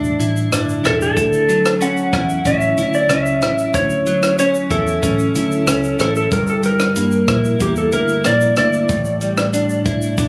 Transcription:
Already playing: E1 A2 G3 D4 E4
0.04 shaker
0.19 A1 E4, closed hi-hat, shaker
0.36 shaker
0.52 G1 D4, cross-stick, closed hi-hat, shaker
0.69 shaker
0.84 E1 E4 A4, cross-stick, closed hi-hat, shaker
1.01 A4, shaker
1.17 D2, kick, closed hi-hat, shaker
1.33 shaker
1.49 F#3, closed hi-hat, shaker
1.66 cross-stick, shaker
1.81 C#4 F#5, closed hi-hat, shaker
1.97 shaker
2.13 E2 E4, kick, cross-stick, closed hi-hat, shaker
2.29 shaker
2.45 A1 C#4 E5, kick, closed hi-hat, shaker
2.61 shaker
2.78 D2 E4, closed hi-hat, shaker
2.94 D5, shaker
3.09 C#2 C#4 E5, cross-stick, closed hi-hat, shaker
3.26 shaker
3.42 A1 E4, cross-stick, closed hi-hat, shaker
3.58 shaker
3.74 D2 C#5, kick, closed hi-hat, shaker
3.90 shaker
4.06 F#3, closed hi-hat, shaker
4.23 cross-stick, shaker
4.39 C#4 C#5, closed hi-hat, shaker
4.54 shaker
4.71 E2 E4 A4, kick, closed hi-hat, shaker
4.87 shaker
5.02 A1 C#4, kick, closed hi-hat, shaker
5.19 shaker
5.35 D2 E4, closed hi-hat, shaker
5.51 shaker
5.67 C#2 C#4, cross-stick, closed hi-hat, shaker
5.84 shaker
5.99 A1 E4 A4, cross-stick, closed hi-hat, shaker
6.16 A4, shaker
6.31 G1 G2 A#4, kick, closed hi-hat, shaker
6.47 A4, shaker
6.63 G3 A#4, closed hi-hat, shaker
6.80 cross-stick, shaker
6.96 G2 A#3, closed hi-hat, shaker
7.11 shaker
7.28 A#1 E4, kick, cross-stick, closed hi-hat, shaker
7.44 shaker
7.60 E2 A#3 G4, kick, closed hi-hat, shaker
7.76 A4, shaker
7.92 D2 E4 A#4, closed hi-hat, shaker
8.08 shaker
8.24 A#1 A#3 D5, cross-stick, closed hi-hat, shaker
8.41 shaker
8.56 D2 E4 D5, cross-stick, closed hi-hat, shaker
8.73 shaker
8.89 A1 A2, kick, closed hi-hat, shaker
9.05 shaker
9.21 G3, closed hi-hat, shaker
9.37 cross-stick, shaker
9.53 D4, closed hi-hat, shaker
9.69 shaker
9.86 B1 E4, kick, closed hi-hat, shaker
10.02 shaker
10.18 E1 D4, kick, closed hi-hat, shaker

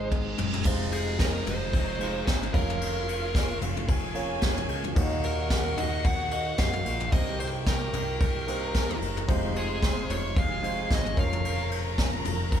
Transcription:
Already playing: G#1 G#2 C3 D#3 G#3 D#4 G#4 C5, reverse cymbal
0.11 kick, high tom
0.38 F#1, mid tom
0.53 floor tom
0.65 F1 C3 G#3 D#4 F4 C5 D#5, kick, crash, downlifter
0.92 G#4, ride
1.19 A#4, kick, snare, ride
1.46 F1 C5, floor tom, ride
1.73 kick, ride
1.99 G#3 D#4 F4 C5, ride
2.26 G#1 C5, kick, snare, ride
2.43 floor tom
2.53 F1 F3 A#3 C#4 F4 A#4 C#5 F5, kick, crash
2.70 floor tom
2.81 ride
3.08 ride
3.35 kick, snare, ride
3.62 F1, floor tom, ride
3.77 floor tom
3.88 G#4 G#5, kick, ride
4.14 A#3 C#4 F4 C#5, ride
4.41 F1, kick, snare, ride
4.57 floor tom
4.69 C#2, ride
4.84 floor tom
4.95 D#2 A#2 A#3 D#4 F#4 C#5 F#5, kick, ride
5.03 D#5
5.23 A#4, ride
5.50 kick, snare, ride
5.77 D#2 D#5, floor tom, ride
6.05 F#5, kick, ride
6.31 A#3 D#4 F#4 D#5 F#5, ride
6.58 F#2 F5, kick, snare, ride
6.73 floor tom
6.85 A#1, ride
7.00 floor tom
7.11 C2 G2 A#3 D#4 G4 C5 D#5 G5, kick, ride
7.40 C5, ride
7.66 A#4, kick, snare, ride
7.93 C2, floor tom, ride
8.21 kick, ride
8.47 A#3 D#4 G4 A#4 C5 A#5, ride
8.74 D#2, kick, snare, ride
8.90 floor tom
9.01 F#1, ride
9.17 floor tom
9.27 F1 C3 F3 F#3 G#3 D#4 F4 C5 C6, kick, ride
9.34 G#3
9.56 G#4, ride
9.83 kick, snare, ride
10.09 F1 C#5, floor tom, ride
10.37 G#4 F5 G#5, kick, ride
10.62 G#3 D#4 F4 C5, ride
10.90 G#1 D#5, kick, snare, ride
11.06 floor tom
11.16 F1 A#2 C#3 F3 A#3 C#4 F4 A#4 C#5 F5 A#5, kick, ride
11.33 floor tom
11.45 ride
11.71 ride
11.98 kick, snare, ride
12.25 F1, floor tom, ride
12.52 kick, ride

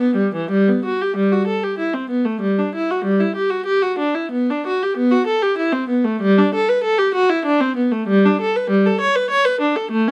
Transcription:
0.00 B3
0.16 G3
0.35 E3
0.51 G3
0.69 B3
0.85 F#4
1.01 G4
1.16 G3
1.32 F#4
1.47 A4
1.64 G4
1.78 E4
1.94 C4
2.10 B3
2.25 A3
2.41 G3
2.59 D4
2.75 E4
2.91 F#4
3.05 G3
3.20 E4
3.36 G4
3.50 F#4
3.66 G4
3.82 F#4
3.99 D4
4.15 E4
4.31 B3
4.50 D4
4.67 F#4
4.83 G4
4.97 B3
5.11 F#4
5.27 A4
5.42 G4
5.58 E4
5.73 C4
5.89 B3
6.05 A3
6.21 G3
6.38 D4
6.55 A4
6.69 B4
6.84 A4
6.98 G4
7.14 F#4
7.30 E4
7.45 D4
7.61 C4
7.76 B3
7.92 A3
8.08 G3
8.25 D4
8.41 A4
8.56 B4
8.70 G3
8.86 A4
9.00 C#5
9.16 B4
9.30 C#5
9.45 B4
9.61 D4
9.76 A4
9.91 A3
10.08 C#4

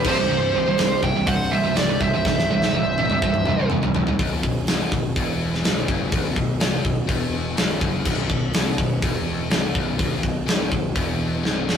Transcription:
0.04 C1 C2 G2 C3 G4 C5, kick, crash
0.17 C2 G2
0.27 C1 C2 G2
0.54 C1 C2 G2
0.66 C2 G2
0.78 C1 C2 G2, snare, open hi-hat
1.03 C1 C2 G2 G5, kick
1.08 E5
1.15 C2 G2
1.27 C1 C2 G2 C5 F#5, kick, open hi-hat
1.52 C1 C2 G2 C5 E5
1.67 C2 G2
1.75 C1 C2 D5, snare, open hi-hat
1.80 C2 G2 G4
1.90 C2 G2
2.01 C1 C2 G2 E5, kick
2.05 C5
2.14 C2 G2
2.25 C1 C2 G2, kick, snare
2.38 snare
2.51 C2 G2
2.62 C2 G2, snare
2.73 C1 C2 G2, high tom
2.98 C2 G2, high tom
3.10 C2 G2, mid tom
3.22 C1 C2 G2, kick
3.34 mid tom
3.45 C1 C2 G2, mid tom
3.58 C2 G2
3.70 C1 C2 G2, mid tom
3.82 C2 G2, floor tom
3.95 C1 C2 G2, floor tom
4.07 C2 G2, floor tom
4.19 B0 B1, kick, open hi-hat
4.43 B0 B1, kick
4.67 C1 C2, snare, open hi-hat
4.92 B0 B1, kick
5.16 E1 E2, kick, open hi-hat
5.54 snare
5.64 B0 B1, snare, open hi-hat
5.88 F#1 F#2, kick
6.12 B0 B1, kick, open hi-hat
6.36 B0 B1, kick
6.60 C1 C2, snare, open hi-hat
6.84 B0 B1, kick
7.07 E1 E2, kick, open hi-hat
7.57 B0 B1, snare, open hi-hat
7.81 F#1 F#2, kick
8.05 B0 B1, kick, crash
8.30 B0 B1, kick
8.54 C1 C2, snare, open hi-hat
8.78 B0 B1, kick
9.02 E1 E2, kick, open hi-hat
9.50 C1 C2, snare, open hi-hat
9.75 B0 B1, kick
9.99 B0 B1, kick, open hi-hat
10.23 B0 B1, kick
10.46 C1 C2, snare, open hi-hat
10.72 B0 B1, kick
10.95 E1 E2, kick, open hi-hat
11.43 C1 C2, snare
11.68 B0 B1, snare

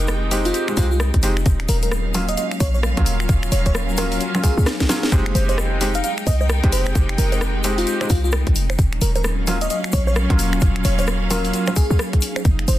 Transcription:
Already playing: F1 G#3 C4 D#4 G4 A#4 G5
0.08 cross-stick, shaker
0.31 G#3 C4 D#4 G4, open hi-hat, shaker
0.45 F4, open hi-hat, shaker
0.54 closed hi-hat, shaker
0.68 G#3 C4 D#4 G4, finger snap, shaker
0.77 C2 G#3 C4 D#4 F4 G4, kick, open hi-hat, shaker
0.91 F4, shaker
1.00 cross-stick, shaker
1.14 G#1, kick, closed hi-hat
1.23 F1 G#3 C4 D#4 G4, open hi-hat, shaker
1.37 finger snap, shaker
1.46 D#1 F#3 A#3 C#4 F4, kick, closed hi-hat, shaker
1.60 finger snap, closed hi-hat
1.67 D#1 A#4 F5, open hi-hat, shaker
1.75 F#3
1.82 A#4, closed hi-hat, shaker
1.92 cross-stick, shaker
2.14 F#3 A#3 C#4 F4, open hi-hat, shaker
2.29 D#5, closed hi-hat, shaker
2.37 D#5, closed hi-hat, shaker
2.52 finger snap, shaker
2.60 A#1 C#5, kick, open hi-hat, shaker
2.74 C#5, shaker
2.83 cross-stick, shaker
2.97 F#1 F#3 A#3 C#4 F4, kick, closed hi-hat
3.06 D#1, open hi-hat, shaker
3.20 finger snap, shaker
3.29 D#1, kick, closed hi-hat, shaker
3.43 finger snap, closed hi-hat, shaker
3.52 D#1 C#5, open hi-hat, shaker
3.66 C#5, kick, closed hi-hat, shaker
3.75 cross-stick, shaker
3.89 shaker
3.97 F#3 A#3 C#4 F4 A#4, open hi-hat, shaker
4.12 open hi-hat, shaker
4.20 closed hi-hat, shaker
4.35 F#3 A#3 C#4 F4, finger snap, shaker
4.44 F#3 A#3 C#4 F4 G#4, kick, open hi-hat, shaker
4.57 C#2, shaker
4.66 cross-stick, snare, shaker
4.80 kick, snare, closed hi-hat, shaker
4.89 F#3 A#3 C#4 F4, snare, open hi-hat, shaker
5.03 snare, closed hi-hat, shaker
5.12 F1 G#3 C4 D#4 G4, kick, closed hi-hat, shaker
5.26 finger snap, closed hi-hat
5.35 F1 C5, open hi-hat, shaker
5.45 G#3 C5, closed hi-hat, high bongo
5.50 shaker
5.58 G5, cross-stick, shaker
5.81 G#3 C4 D#4 G4, open hi-hat, shaker
5.94 F5, closed hi-hat, shaker
6.04 F5, closed hi-hat, shaker
6.18 finger snap, shaker
6.27 C2 D#5, kick, open hi-hat, high bongo, shaker
6.41 D#5, high bongo, shaker
6.49 cross-stick, shaker
6.64 G#1 G#3 C4 D#4 G4, kick, closed hi-hat
6.72 F1 C5, open hi-hat, shaker
6.86 finger snap, shaker
6.95 F1, kick, closed hi-hat, shaker
7.09 finger snap, closed hi-hat
7.18 F1 A#4, open hi-hat, shaker
7.32 closed hi-hat, high bongo, shaker
7.41 cross-stick, shaker
7.64 G#3 C4 D#4 G4, open hi-hat, shaker
7.78 F4, open hi-hat, shaker
7.87 closed hi-hat, shaker
8.01 G#3 C4 D#4 G4, finger snap, high bongo, shaker
8.10 C2 F4, kick, open hi-hat, shaker
8.24 F4, shaker
8.31 cross-stick, shaker
8.47 G#1, kick, closed hi-hat
8.56 F1, open hi-hat, shaker
8.70 finger snap, high bongo, shaker
8.79 D#1 F#3 A#3 C#4 F4, kick, closed hi-hat, shaker
8.93 F#3, finger snap, closed hi-hat
9.01 D#1 A#4, open hi-hat, shaker
9.16 A#4, closed hi-hat, high bongo, shaker
9.24 cross-stick, shaker
9.29 F5
9.47 F#3 A#3 C#4 F4, open hi-hat, shaker
9.61 D#5, closed hi-hat, shaker
9.70 D#5, closed hi-hat, shaker
9.84 finger snap, shaker
9.92 A#1 C#5, kick, open hi-hat, high bongo, shaker
10.07 C#5, high bongo, shaker
10.16 cross-stick, shaker
10.30 F#1 F#3 A#3 C#4 F4, kick, closed hi-hat
10.39 D#1, open hi-hat, shaker
10.53 finger snap, shaker
10.61 D#1 D#4, kick, closed hi-hat, shaker
10.76 finger snap, closed hi-hat
10.84 D#1 C#5, open hi-hat, shaker
10.99 C#5, closed hi-hat, high bongo, shaker
11.07 cross-stick, shaker
11.31 F#3 A#3 C#4 F4 A#4, open hi-hat, shaker
11.45 open hi-hat, shaker
11.54 closed hi-hat, shaker
11.67 F#3 A#3 C#4 F4, finger snap, high bongo, shaker
11.76 G#4, kick, open hi-hat, shaker
11.90 C#2, shaker
11.99 cross-stick, shaker
12.13 kick, closed hi-hat
12.21 open hi-hat, shaker
12.36 finger snap, high bongo, shaker
12.45 F1 G#3 C4 D#4 G4, kick, closed hi-hat, shaker
12.59 finger snap, closed hi-hat
12.68 F1 G#3 C5, open hi-hat, shaker

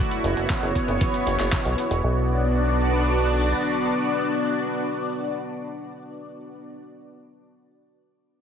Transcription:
Already playing: E4 F#4
0.00 B3 C#5
0.11 closed hi-hat
0.24 F#1, closed hi-hat
0.37 F#1, closed hi-hat
0.50 kick, clap, closed hi-hat
0.63 F#1, closed hi-hat
0.75 kick, closed hi-hat
0.88 F#1, closed hi-hat
1.01 kick, closed hi-hat
1.14 closed hi-hat
1.27 F#1, closed hi-hat
1.40 F#1, clap, closed hi-hat
1.52 kick, clap, closed hi-hat
1.65 B1, closed hi-hat
1.78 closed hi-hat
1.91 E1, closed hi-hat
2.03 B1 B3 D4 F#4 D5

